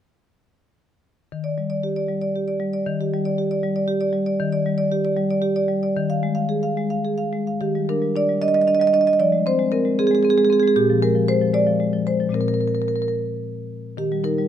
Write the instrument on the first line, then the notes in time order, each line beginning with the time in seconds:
marimba
1.32 D#3
1.44 D5
1.58 G3
1.70 D5
1.83 G4
1.96 D5
2.08 G3
2.22 D5
2.36 G4
2.48 D5
2.60 G3
2.73 D5
2.86 D#3
3.01 G4
3.13 G3
3.25 D5
3.38 G4
3.51 D5
3.63 G3
3.76 D5
3.88 G4
4.01 D5
4.13 G3
4.26 D5
4.40 D#3
4.52 D5
4.66 G3
4.78 D5
4.92 G4
5.05 D5
5.17 G3
5.31 D5
5.42 G4
5.56 D5
5.68 G3
5.83 D5
5.96 D#3
6.10 F5
6.23 G#3
6.35 F5
6.49 G#4
6.63 F5
6.77 G#3
6.90 F5
7.05 G#4
7.18 F5
7.33 G#3
7.47 F5
7.61 D#3 G4
7.75 G3
7.89 D4 A#4
8.02 G3
8.16 D4 D5
8.29 G3
8.42 D4 D#5
8.48 D#5
8.54 G3 D#5
8.62 D#5
8.67 D4 D#5
8.75 D#5
8.79 G3 D#5
8.87 D#5
8.93 D4 D#5
9.01 D#5
9.07 G3 D#5
9.13 D#5
9.19 F3 D5
9.32 G#3
9.46 C4 C5
9.59 G#3
9.72 C4 A#4
9.85 G#3
9.99 C4 G#4
10.07 G#4
10.11 G#3 G#4
10.23 C4 G#4
10.30 G#4
10.38 G#3 G#4
10.45 G#4
10.50 C4 G#4
10.60 G#3 G#4
10.68 G#4
10.76 A#2 G4
10.90 F3
11.02 G#3 A#4
11.15 F3
11.28 G#3 C5
11.41 F3
11.54 G#3 D5
11.67 F3
11.80 G#3
11.93 F3
12.07 G#3 C5
12.20 F3
12.29 A#2 G#3 C4
12.34 A#4
12.41 A#4
12.48 A#4
12.54 A#4
12.61 A#4
12.68 A#4
12.75 A#4
12.82 A#4
12.88 A#4
12.96 A#4
13.02 A#4
13.08 A#4
13.97 D#3 G4
14.12 G3
14.24 D#4 A#4
14.38 G3